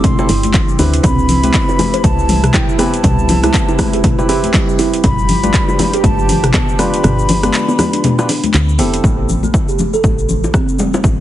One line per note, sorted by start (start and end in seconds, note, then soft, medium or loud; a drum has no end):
0.00 5.00 C3 medium
0.00 1.00 G3 medium
0.00 0.15 C4 medium
0.00 0.15 E4 medium
0.00 0.15 G4 medium
0.00 1.00 G4 medium
0.00 0.15 A4 loud
0.00 kick loud
0.00 closed hi-hat medium
0.00 mid tom medium
0.04 0.79 C6 medium
0.04 low bongo medium
0.04 high conga loud
0.04 cabasa medium
0.19 0.28 C4 loud
0.19 0.28 E4 medium
0.19 0.28 G4 medium
0.19 0.28 A4 loud
0.19 high bongo loud
0.19 cabasa soft
0.29 0.75 G1 medium
0.29 0.43 E4 medium
0.29 open hi-hat medium
0.29 low bongo medium
0.29 cabasa loud
0.43 closed hi-hat soft
0.43 high conga loud
0.43 cabasa soft
0.54 0.67 E3 loud
0.54 kick loud
0.54 clap loud
0.54 closed hi-hat medium
0.54 cabasa medium
0.69 cabasa soft
0.79 0.99 D2 medium
0.79 1.40 C4 medium
0.79 0.92 D4 loud
0.79 1.40 E4 medium
0.79 1.40 G4 medium
0.79 1.40 B4 loud
0.79 open hi-hat medium
0.79 low bongo medium
0.79 cabasa loud
0.94 closed hi-hat soft
0.94 cabasa soft
1.03 1.50 C2 loud
1.03 1.12 C4 medium
1.03 5.00 E4 medium
1.03 2.05 B5 loud
1.03 kick loud
1.03 closed hi-hat medium
1.03 mid tom loud
1.03 low bongo medium
1.03 cabasa medium
1.19 cabasa soft
1.29 open hi-hat medium
1.29 low conga loud
1.29 cabasa medium
1.43 1.54 C4 medium
1.43 2.77 C4 loud
1.43 2.77 E4 medium
1.43 2.77 G4 medium
1.43 2.77 B4 loud
1.43 closed hi-hat soft
1.43 high conga loud
1.43 cabasa soft
1.54 kick loud
1.54 clap loud
1.54 closed hi-hat medium
1.54 cabasa medium
1.69 1.79 B4 medium
1.69 high bongo medium
1.69 cabasa soft
1.79 open hi-hat medium
1.79 high bongo loud
1.79 low bongo medium
1.79 high conga loud
1.79 low conga medium
1.79 cabasa medium
1.94 2.04 C5 loud
1.94 closed hi-hat soft
1.94 cabasa soft
2.04 2.50 C2 loud
2.04 2.55 A5 loud
2.04 kick loud
2.04 closed hi-hat medium
2.04 high conga medium
2.04 cabasa medium
2.19 cabasa soft
2.29 2.42 G3 loud
2.29 open hi-hat medium
2.29 high conga medium
2.29 low conga medium
2.29 cabasa medium
2.44 cross-stick medium
2.44 closed hi-hat soft
2.44 mid tom loud
2.44 cabasa soft
2.53 2.62 E4 medium
2.53 2.78 G5 medium
2.53 kick loud
2.53 cross-stick medium
2.53 clap loud
2.53 closed hi-hat medium
2.53 cabasa medium
2.69 cabasa soft
2.78 2.87 B3 loud
2.78 3.40 C4 medium
2.78 3.40 E4 medium
2.78 3.40 G4 medium
2.78 3.40 B4 loud
2.78 4.25 A5 loud
2.78 cross-stick medium
2.78 open hi-hat medium
2.78 low bongo medium
2.78 high conga medium
2.78 cabasa medium
2.94 closed hi-hat soft
2.94 cabasa soft
3.04 3.50 C2 loud
3.04 3.18 G3 loud
3.04 kick loud
3.04 closed hi-hat medium
3.04 mid tom medium
3.04 low bongo medium
3.04 cabasa medium
3.19 cabasa soft
3.29 open hi-hat medium
3.29 high bongo medium
3.29 low conga loud
3.29 cabasa medium
3.43 4.15 C4 medium
3.43 4.15 E4 medium
3.43 3.53 E4 loud
3.43 4.15 G4 medium
3.43 4.15 B4 loud
3.43 cross-stick medium
3.43 closed hi-hat soft
3.43 high conga loud
3.43 cabasa soft
3.54 kick loud
3.54 clap loud
3.54 closed hi-hat medium
3.54 cabasa medium
3.68 3.78 E4 loud
3.68 high bongo medium
3.68 cabasa soft
3.78 kick medium
3.78 cross-stick medium
3.78 open hi-hat medium
3.78 high bongo loud
3.78 low bongo medium
3.78 high conga loud
3.78 cabasa medium
3.93 4.03 G4 medium
3.93 closed hi-hat soft
3.93 cabasa soft
4.04 kick loud
4.04 closed hi-hat medium
4.04 mid tom medium
4.04 low bongo medium
4.04 high conga medium
4.04 cabasa medium
4.19 4.27 C4 medium
4.19 4.27 E4 medium
4.19 4.27 G4 medium
4.19 4.27 B4 loud
4.19 high bongo loud
4.19 cabasa soft
4.29 5.03 C4 loud
4.29 5.03 E4 medium
4.29 5.03 G4 medium
4.29 4.43 G4 medium
4.29 5.03 B4 loud
4.29 open hi-hat medium
4.29 low bongo medium
4.29 cabasa medium
4.43 closed hi-hat soft
4.43 high conga medium
4.43 cabasa soft
4.54 4.67 G3 loud
4.54 kick loud
4.54 clap loud
4.54 closed hi-hat medium
4.54 cabasa medium
4.69 cabasa soft
4.79 4.92 E4 loud
4.79 open hi-hat medium
4.79 low bongo medium
4.79 cabasa medium
4.94 closed hi-hat soft
4.94 cabasa soft
5.04 5.50 G1 loud
5.04 9.00 F3 medium
5.04 5.12 G3 medium
5.04 9.00 G4 medium
5.04 6.06 B5 loud
5.04 kick loud
5.04 closed hi-hat medium
5.04 mid tom medium
5.04 low bongo medium
5.04 cabasa medium
5.19 cabasa soft
5.29 open hi-hat medium
5.29 low conga loud
5.29 cabasa medium
5.43 5.54 G3 medium
5.43 6.76 D4 loud
5.43 6.76 F4 medium
5.43 6.76 G4 medium
5.43 6.76 B4 loud
5.43 closed hi-hat soft
5.43 high conga loud
5.43 cabasa soft
5.54 kick loud
5.54 clap loud
5.54 closed hi-hat medium
5.54 cabasa soft
5.69 5.78 F4 medium
5.69 high bongo medium
5.69 cabasa soft
5.79 open hi-hat medium
5.79 high bongo loud
5.79 low bongo medium
5.79 high conga medium
5.79 low conga medium
5.79 cabasa medium
5.93 6.04 G4 loud
5.93 closed hi-hat soft
5.93 cabasa soft
6.04 6.50 G1 loud
6.04 6.53 A5 loud
6.04 kick loud
6.04 closed hi-hat medium
6.04 high conga loud
6.04 cabasa medium
6.19 cabasa soft
6.29 6.42 D3 loud
6.29 open hi-hat loud
6.29 high conga medium
6.29 low conga medium
6.29 cabasa medium
6.44 cross-stick medium
6.44 closed hi-hat soft
6.44 mid tom medium
6.44 cabasa soft
6.54 6.62 B3 medium
6.54 6.80 A5 loud
6.54 kick loud
6.54 cross-stick medium
6.54 clap loud
6.54 closed hi-hat medium
6.54 cabasa soft
6.69 cabasa soft
6.79 6.87 F3 loud
6.79 7.40 D4 loud
6.79 7.40 F4 medium
6.79 7.40 G4 medium
6.79 7.40 B4 loud
6.79 8.54 B5 loud
6.79 cross-stick medium
6.79 open hi-hat medium
6.79 low bongo medium
6.79 high conga medium
6.79 cabasa medium
6.94 closed hi-hat soft
6.94 cabasa soft
7.03 7.50 G1 loud
7.03 7.18 D3 loud
7.03 cross-stick medium
7.03 closed hi-hat medium
7.03 mid tom medium
7.03 low bongo medium
7.03 cabasa medium
7.19 cabasa soft
7.29 open hi-hat medium
7.29 high bongo medium
7.29 low conga loud
7.29 cabasa medium
7.43 7.53 B3 loud
7.43 8.15 D4 medium
7.43 8.15 F4 medium
7.43 8.15 G4 medium
7.43 8.15 B4 loud
7.43 cross-stick medium
7.43 closed hi-hat soft
7.43 high conga loud
7.43 cabasa soft
7.54 clap loud
7.54 closed hi-hat medium
7.54 cabasa medium
7.68 7.78 B3 loud
7.68 high bongo medium
7.68 cabasa soft
7.79 cross-stick medium
7.79 open hi-hat medium
7.79 high bongo loud
7.79 low bongo medium
7.79 high conga medium
7.79 low conga medium
7.79 cabasa medium
7.93 8.03 D4 medium
7.93 closed hi-hat soft
7.93 cabasa soft
8.04 closed hi-hat medium
8.04 mid tom medium
8.04 low bongo medium
8.04 high conga loud
8.04 cabasa medium
8.19 8.27 D4 medium
8.19 8.27 F4 medium
8.19 8.27 G4 medium
8.19 8.27 B4 loud
8.19 high bongo loud
8.19 cabasa soft
8.29 8.43 D4 medium
8.29 open hi-hat medium
8.29 low bongo medium
8.29 cabasa medium
8.44 closed hi-hat soft
8.44 high conga medium
8.44 cabasa soft
8.54 8.81 D2 medium
8.54 8.67 D3 loud
8.54 clap loud
8.54 closed hi-hat medium
8.54 cabasa medium
8.69 cabasa soft
8.79 9.00 F1 medium
8.79 8.92 B3 loud
8.79 9.29 C4 medium
8.79 9.29 E4 medium
8.79 9.29 G4 medium
8.79 9.29 A4 loud
8.79 open hi-hat medium
8.79 low bongo medium
8.79 cabasa medium
8.94 closed hi-hat soft
8.94 cabasa soft
9.04 9.50 A1 medium
9.04 9.12 A3 medium
9.04 kick loud
9.04 low bongo medium
9.04 cabasa soft
9.29 low conga medium
9.29 cabasa medium
9.43 9.54 A3 medium
9.43 high conga loud
9.43 cabasa soft
9.54 kick loud
9.54 cabasa medium
9.69 9.79 G4 medium
9.69 cabasa soft
9.79 low bongo medium
9.79 high conga medium
9.79 low conga medium
9.79 cabasa medium
9.94 10.04 A4 loud
9.94 cabasa soft
10.04 10.50 A1 medium
10.04 kick loud
10.04 high conga medium
10.04 cabasa medium
10.19 cabasa soft
10.29 10.42 E3 medium
10.29 high conga medium
10.29 low conga medium
10.29 cabasa medium
10.44 high bongo medium
10.44 cabasa soft
10.54 10.62 C4 medium
10.54 kick loud
10.54 cross-stick medium
10.54 cabasa soft
10.69 cabasa soft
10.79 10.87 G3 loud
10.79 low bongo medium
10.79 high conga medium
10.79 cabasa medium
10.94 high bongo loud
10.94 cabasa soft
11.04 11.20 A1 medium
11.04 11.18 E3 medium
11.04 kick loud
11.04 low bongo medium
11.04 cabasa medium